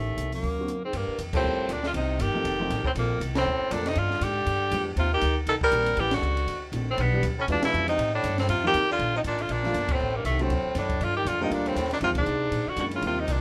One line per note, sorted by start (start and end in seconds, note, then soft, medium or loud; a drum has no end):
0.00 0.16 A1 medium
0.00 0.32 D#2 medium
0.00 0.33 A3 medium
0.17 0.41 C2 medium
0.17 closed hi-hat soft
0.32 0.80 F#2 medium
0.32 0.81 A#3 medium
0.32 open hi-hat soft
0.43 0.91 D2 medium
0.43 kick soft
0.43 open hi-hat soft
0.59 0.68 D3 medium
0.59 0.68 A#3 medium
0.59 0.69 C4 medium
0.59 0.69 F#4 medium
0.68 closed hi-hat soft
0.84 0.96 G#2 medium
0.84 0.97 C4 medium
0.93 1.07 G2 medium
0.93 1.19 G2 medium
0.93 1.20 A#3 medium
0.93 kick soft
0.93 ride medium
1.08 muted upright bass stroke soft
1.19 1.43 F2 medium
1.19 kick soft
1.19 hi-hat pedal soft
1.19 ride medium
1.33 1.70 A2 medium
1.33 1.68 G3 medium
1.33 1.68 C4 medium
1.33 1.73 C4 medium
1.33 1.68 F4 medium
1.33 1.69 A4 medium
1.33 1.68 A#4 medium
1.33 kick medium
1.33 crash medium
1.44 1.58 D#2 medium
1.59 muted upright bass stroke soft
1.69 1.94 D2 medium
1.69 1.83 A#2 medium
1.69 1.85 D4 medium
1.69 kick soft
1.69 hi-hat pedal medium
1.69 ride medium
1.83 1.88 D3 medium
1.83 1.91 F4 medium
1.83 snare soft
1.94 2.19 C2 medium
1.94 2.22 C3 medium
1.94 2.23 D#4 medium
1.94 kick soft
1.94 ride medium
2.19 2.33 G1 medium
2.19 2.84 D#3 medium
2.19 2.86 G4 medium
2.19 kick soft
2.19 hi-hat pedal medium
2.19 ride medium
2.34 2.44 F3 medium
2.34 2.44 A3 medium
2.34 2.44 C4 medium
2.34 2.45 D#4 medium
2.34 2.45 A4 medium
2.45 2.70 F1 medium
2.45 kick soft
2.45 ride medium
2.59 2.69 F3 medium
2.59 2.70 A3 medium
2.59 2.70 C4 medium
2.59 2.70 D#4 medium
2.59 2.70 G4 medium
2.70 2.84 A1 medium
2.70 kick soft
2.70 snare soft
2.70 hi-hat pedal soft
2.70 ride medium
2.84 2.90 A2 medium
2.84 2.91 C4 medium
2.84 muted upright bass stroke soft
2.84 kick medium
2.95 3.20 A#1 medium
2.95 3.19 F2 medium
2.95 3.21 A#3 medium
2.95 kick soft
2.95 ride medium
3.20 3.45 C2 medium
3.20 kick soft
3.20 hi-hat pedal medium
3.20 ride medium
3.35 3.73 A2 medium
3.35 3.74 C4 medium
3.35 snare medium
3.35 ride medium
3.46 3.59 D2 medium
3.61 muted upright bass stroke soft
3.71 3.95 F2 medium
3.71 3.88 A#2 medium
3.71 3.85 F3 medium
3.71 3.85 A3 medium
3.71 3.85 A#3 medium
3.71 3.89 D4 medium
3.71 3.85 D4 medium
3.71 3.86 A4 medium
3.71 kick soft
3.71 hi-hat pedal soft
3.71 ride medium
3.86 3.99 C3 medium
3.86 4.00 D#4 medium
3.86 snare soft
3.86 ride medium
3.95 4.21 G2 medium
3.95 4.23 D3 medium
3.95 4.25 F4 medium
3.95 kick soft
3.95 ride medium
4.11 snare soft
4.21 4.46 G#2 medium
4.21 4.87 D3 medium
4.21 4.88 G4 loud
4.21 kick soft
4.21 hi-hat pedal soft
4.21 ride medium
4.46 4.71 G2 medium
4.46 kick soft
4.46 ride medium
4.71 4.96 F2 medium
4.71 4.85 F3 medium
4.71 4.85 G#3 soft
4.71 4.86 B3 soft
4.71 4.86 D4 medium
4.71 4.86 G4 medium
4.71 kick soft
4.71 hi-hat pedal medium
4.71 ride medium
4.96 5.21 D#2 medium
4.96 5.11 C3 medium
4.96 5.12 F4 medium
4.96 kick soft
4.96 ride medium
5.13 5.36 D#3 medium
5.13 5.36 G4 loud
5.21 5.46 D2 medium
5.21 kick soft
5.21 hi-hat pedal medium
5.21 ride medium
5.46 5.60 C2 medium
5.46 5.55 D#3 medium
5.46 5.55 A4 loud
5.46 kick soft
5.46 ride medium
5.61 6.01 G3 medium
5.61 6.01 A#4 loud
5.61 muted upright bass stroke soft
5.61 kick medium
5.71 5.96 A#1 medium
5.71 5.86 D#3 soft
5.71 5.86 G3 medium
5.71 5.86 A#3 soft
5.71 5.86 C4 soft
5.71 5.86 G4 medium
5.71 kick soft
5.71 hi-hat pedal medium
5.71 ride medium
5.86 ride medium
5.97 6.21 A1 medium
5.97 6.16 E3 medium
5.97 6.16 G4 loud
5.97 kick soft
5.97 ride medium
6.11 6.62 D3 medium
6.11 6.62 F#4 medium
6.11 snare medium
6.11 ride medium
6.22 6.47 C#2 medium
6.22 hi-hat pedal medium
6.37 ride soft
6.47 6.71 D2 medium
6.47 kick soft
6.47 ride medium
6.72 6.97 A#1 medium
6.72 6.86 D#3 soft
6.72 6.87 A3 soft
6.72 6.87 C4 soft
6.72 6.87 D4 soft
6.72 6.87 F#4 medium
6.72 kick soft
6.72 hi-hat pedal medium
6.72 ride medium
6.91 7.03 A2 medium
6.91 7.03 C4 medium
6.98 7.22 B1 medium
6.98 7.25 B3 medium
6.98 kick soft
6.98 ride medium
7.02 7.25 G2 medium
7.13 7.22 E3 medium
7.13 7.23 G3 medium
7.13 7.23 B3 medium
7.13 7.23 D4 medium
7.13 7.23 G4 medium
7.23 7.47 D2 medium
7.23 kick soft
7.23 hi-hat pedal medium
7.23 ride medium
7.39 7.44 A2 medium
7.39 7.45 C#4 medium
7.48 7.62 E2 medium
7.48 7.63 B2 medium
7.48 7.86 E3 medium
7.48 7.86 G#3 medium
7.48 7.86 B3 medium
7.48 7.86 D4 medium
7.48 7.86 F4 medium
7.48 kick soft
7.48 ride medium
7.52 7.64 D4 loud
7.63 7.87 B2 medium
7.63 7.87 E4 loud
7.63 muted upright bass stroke soft
7.63 snare medium
7.63 ride medium
7.74 7.98 F2 medium
7.74 hi-hat pedal soft
7.88 8.12 C3 medium
7.88 8.12 D#4 loud
7.88 ride soft
7.98 8.23 A2 medium
7.98 kick soft
7.98 ride medium
8.14 8.37 A2 medium
8.14 8.38 D4 medium
8.24 8.48 G2 medium
8.24 kick soft
8.24 hi-hat pedal medium
8.24 ride medium
8.38 8.49 A2 medium
8.38 8.49 C4 medium
8.38 snare medium
8.38 ride soft
8.49 8.73 F2 medium
8.49 8.63 C3 medium
8.49 8.63 F4 medium
8.49 kick soft
8.49 ride medium
8.63 8.73 D#3 medium
8.63 8.89 D#3 medium
8.63 8.74 F3 medium
8.63 8.74 A3 medium
8.63 8.74 C4 medium
8.63 8.74 F4 medium
8.63 8.89 G4 loud
8.74 8.99 D#2 medium
8.74 kick soft
8.74 hi-hat pedal soft
8.74 ride medium
8.91 9.13 D3 medium
8.91 9.14 F4 loud
8.99 9.23 A#1 medium
8.99 kick soft
8.99 ride soft
9.16 9.20 C3 medium
9.16 9.21 D#4 medium
9.24 9.48 A1 medium
9.24 9.43 A#2 medium
9.24 9.43 D4 medium
9.24 kick soft
9.24 hi-hat pedal soft
9.24 ride medium
9.39 9.53 D3 medium
9.39 9.53 F4 medium
9.39 ride soft
9.49 9.73 A#1 medium
9.49 9.93 A#2 medium
9.49 9.95 D4 loud
9.49 kick soft
9.49 ride medium
9.63 9.74 D3 medium
9.63 9.74 F3 medium
9.63 9.75 A3 medium
9.63 9.75 A#3 medium
9.63 9.75 F4 medium
9.63 snare soft
9.74 9.99 G1 medium
9.74 kick soft
9.74 hi-hat pedal soft
9.74 ride medium
9.89 10.19 A2 medium
9.89 kick medium
9.89 ride medium
9.93 10.17 C4 medium
10.00 10.24 A1 medium
10.15 10.27 G2 medium
10.15 10.25 A#3 medium
10.25 10.49 C2 medium
10.25 10.43 A3 medium
10.25 kick soft
10.25 hi-hat pedal medium
10.25 ride medium
10.29 10.43 D#2 medium
10.39 10.76 A2 medium
10.39 10.49 D3 medium
10.39 10.50 F#3 medium
10.39 10.50 A3 medium
10.39 10.50 C4 medium
10.39 10.77 C4 medium
10.39 10.50 F#4 medium
10.39 ride soft
10.49 10.64 D2 medium
10.49 kick soft
10.49 ride medium
10.65 muted upright bass stroke soft
10.75 10.99 F#2 medium
10.75 11.03 A2 medium
10.75 11.05 D4 medium
10.75 kick soft
10.75 snare soft
10.75 hi-hat pedal medium
10.75 ride medium
10.89 kick medium
10.89 ride soft
11.00 11.25 G2 medium
11.00 11.16 D3 medium
11.00 11.16 F4 medium
11.00 kick soft
11.00 ride medium
11.16 11.29 D#3 medium
11.16 11.29 G4 medium
11.25 11.50 F2 medium
11.25 11.40 D3 medium
11.25 11.42 F4 medium
11.25 kick soft
11.25 hi-hat pedal soft
11.25 ride medium
11.40 11.54 C3 medium
11.40 11.74 D3 medium
11.40 11.75 G3 medium
11.40 11.75 A3 medium
11.40 11.75 A#3 medium
11.40 11.55 D#4 medium
11.40 11.75 F4 medium
11.51 11.75 D2 medium
11.51 11.68 A#2 medium
11.51 11.69 D4 loud
11.51 kick soft
11.51 ride medium
11.66 11.77 A2 medium
11.66 11.77 C4 medium
11.66 ride soft
11.76 12.00 D#2 medium
11.76 11.91 A2 medium
11.76 11.91 C4 medium
11.76 kick soft
11.76 hi-hat pedal soft
11.76 ride medium
11.85 snare soft
11.91 11.97 A#2 medium
11.91 11.98 D4 medium
11.91 snare soft
11.91 ride soft
12.01 12.10 F2 medium
12.01 12.09 C3 medium
12.01 12.15 D#3 medium
12.01 12.15 F3 medium
12.01 12.15 G#3 medium
12.01 12.16 C4 medium
12.01 12.10 F4 medium
12.01 12.16 F4 medium
12.01 kick soft
12.01 ride medium
12.10 12.18 D#2 medium
12.15 12.26 C2 medium
12.15 12.69 G#2 medium
12.15 12.70 D4 medium
12.15 kick medium
12.15 ride medium
12.26 12.51 C3 medium
12.26 hi-hat pedal soft
12.51 12.65 A#2 medium
12.51 kick soft
12.51 ride medium
12.67 12.78 D3 medium
12.67 12.79 F#4 medium
12.67 muted upright bass stroke soft
12.76 13.01 F#2 medium
12.76 13.03 D3 medium
12.76 12.85 D3 medium
12.76 13.03 G#3 soft
12.76 13.02 A#3 soft
12.76 13.03 C#4 soft
12.76 13.04 E4 medium
12.76 12.86 F#4 medium
12.76 kick soft
12.76 hi-hat pedal medium
12.76 ride medium
12.91 13.03 C#3 medium
12.91 ride soft
12.95 13.04 F4 medium
13.02 13.26 D#2 medium
13.02 13.20 C3 medium
13.02 13.16 D#3 medium
13.02 13.16 G3 medium
13.02 13.16 A#3 medium
13.02 13.16 C4 medium
13.02 13.16 F4 medium
13.02 kick soft
13.02 ride medium
13.07 13.21 F4 medium
13.20 13.31 C3 medium
13.20 13.33 D#4 medium
13.27 13.41 C2 medium
13.27 13.41 A#2 medium
13.27 kick soft
13.27 hi-hat pedal medium
13.27 ride medium
13.31 13.41 D4 medium